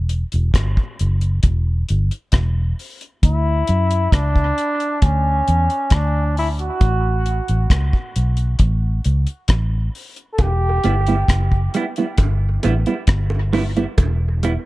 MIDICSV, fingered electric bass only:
0, 0, Header, 1, 2, 480
1, 0, Start_track
1, 0, Tempo, 896057
1, 1728, Time_signature, 4, 2, 24, 8
1, 7850, End_track
2, 0, Start_track
2, 0, Title_t, "Fingered electric bass"
2, 0, Program_c, 0, 33
2, 0, Note_on_c, 0, 28, 99
2, 123, Note_off_c, 0, 28, 0
2, 181, Note_on_c, 0, 28, 86
2, 278, Note_off_c, 0, 28, 0
2, 292, Note_on_c, 0, 31, 79
2, 396, Note_off_c, 0, 31, 0
2, 539, Note_on_c, 0, 30, 94
2, 741, Note_off_c, 0, 30, 0
2, 772, Note_on_c, 0, 28, 97
2, 977, Note_off_c, 0, 28, 0
2, 1020, Note_on_c, 0, 31, 87
2, 1120, Note_off_c, 0, 31, 0
2, 1252, Note_on_c, 0, 28, 94
2, 1457, Note_off_c, 0, 28, 0
2, 1734, Note_on_c, 0, 38, 103
2, 1938, Note_off_c, 0, 38, 0
2, 1977, Note_on_c, 0, 42, 87
2, 2180, Note_off_c, 0, 42, 0
2, 2212, Note_on_c, 0, 37, 80
2, 2417, Note_off_c, 0, 37, 0
2, 2693, Note_on_c, 0, 38, 90
2, 2898, Note_off_c, 0, 38, 0
2, 2938, Note_on_c, 0, 40, 89
2, 3039, Note_off_c, 0, 40, 0
2, 3170, Note_on_c, 0, 38, 95
2, 3583, Note_off_c, 0, 38, 0
2, 3651, Note_on_c, 0, 33, 112
2, 3961, Note_off_c, 0, 33, 0
2, 4014, Note_on_c, 0, 33, 77
2, 4114, Note_off_c, 0, 33, 0
2, 4128, Note_on_c, 0, 37, 90
2, 4233, Note_off_c, 0, 37, 0
2, 4373, Note_on_c, 0, 35, 79
2, 4577, Note_off_c, 0, 35, 0
2, 4609, Note_on_c, 0, 33, 93
2, 4815, Note_off_c, 0, 33, 0
2, 4852, Note_on_c, 0, 37, 83
2, 4955, Note_off_c, 0, 37, 0
2, 5087, Note_on_c, 0, 33, 90
2, 5294, Note_off_c, 0, 33, 0
2, 5569, Note_on_c, 0, 28, 107
2, 5775, Note_off_c, 0, 28, 0
2, 5812, Note_on_c, 0, 31, 90
2, 6016, Note_off_c, 0, 31, 0
2, 6050, Note_on_c, 0, 30, 89
2, 6255, Note_off_c, 0, 30, 0
2, 6529, Note_on_c, 0, 31, 94
2, 6735, Note_off_c, 0, 31, 0
2, 6777, Note_on_c, 0, 33, 81
2, 6877, Note_off_c, 0, 33, 0
2, 7008, Note_on_c, 0, 31, 87
2, 7421, Note_off_c, 0, 31, 0
2, 7492, Note_on_c, 0, 28, 102
2, 7801, Note_off_c, 0, 28, 0
2, 7850, End_track
0, 0, End_of_file